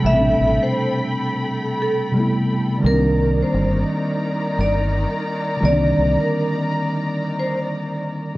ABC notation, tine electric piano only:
X:1
M:4/4
L:1/8
Q:"Swing 16ths" 1/4=86
K:C
V:1 name="Tine electric piano"
[B,,C,G,A,CD]6 [C,G,A,B,E]2 | [D,_E,G,_B,CD]8 | [D,_E,G,_B,CD]8 |]